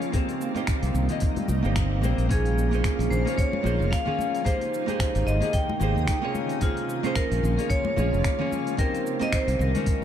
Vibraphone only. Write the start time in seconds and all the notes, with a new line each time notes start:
2.31 G#4
3.10 C5
3.38 C#5
3.91 F5
4.45 C5
5.27 D#5
5.53 G5
6.63 F4
7.04 C5
7.16 A#4
7.70 C#5
8.79 A#4
9.23 D#5
9.35 C5
9.62 A#4